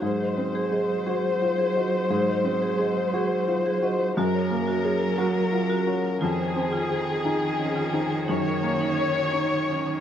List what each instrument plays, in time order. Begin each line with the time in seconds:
0.02 felt piano G#2, cello F#3, marimba G#4, violin section C5
0.20 marimba D#5
0.37 felt piano C4, marimba C5
0.55 marimba G#4
0.72 felt piano G#4, marimba D#5
0.89 marimba C5
1.06 felt piano F#4, marimba G#4
1.41 felt piano F4, marimba F#5
1.58 marimba G#4
1.76 felt piano F#4, marimba D#5
1.94 marimba C5
2.10 felt piano G#2, marimba G#4
2.28 marimba D#5
2.44 felt piano C4, marimba C5
2.62 marimba G#4
2.78 felt piano G#4, marimba D#5
2.97 marimba C5
3.13 felt piano F#4, marimba G#4
3.48 felt piano F4, marimba F#5
3.66 marimba G#4
3.82 felt piano F#4, marimba D#5
4.01 marimba C5
4.17 felt piano F#2, cello F#3, marimba F#4, violin section A#4
4.34 marimba C#5
4.50 felt piano A#3, marimba A#4
4.67 marimba F#4
4.84 felt piano G#4, marimba C#5
5.01 marimba A#4
5.18 felt piano F#4, marimba F#4
5.52 felt piano F4, marimba F#5
5.70 marimba F#4
5.87 felt piano F#4, marimba C#5
6.04 marimba A#4
6.21 felt piano F2, cello D#3, marimba F4, violin section G#4
6.38 marimba C5
6.56 felt piano C4, marimba G#4
6.73 marimba F4
6.90 felt piano G#4, marimba C5
7.07 marimba G#4
7.24 felt piano D#4, marimba F4
7.59 felt piano C#4, marimba D#5
7.76 marimba F4
7.92 felt piano D#4, marimba C5
8.10 marimba G#4
8.28 felt piano F#2, marimba D#4, violin section C#5
8.45 marimba A#4
8.63 felt piano A#3, marimba F#4
8.81 marimba D#4
8.98 marimba A#4, felt piano C#5
9.15 marimba F#4
9.32 marimba D#4, felt piano D#4
9.69 felt piano C#4, marimba C#5
9.87 marimba D#4